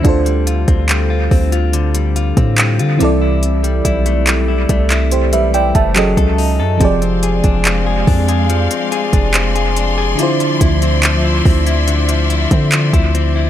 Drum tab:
HH |xxxxx-oxxxxxxxx-|xxxxx-xxxxxxxxo-|xxxxx-oxxxxxxxx-|xxxxx-oxxxxxxxx-|
CP |----x-------x---|----x--x----x---|----x-------x---|----x-------x---|
BD |o--o--o----o----|--o---o----o-o--|o--o--o----o----|--o---o----o-o--|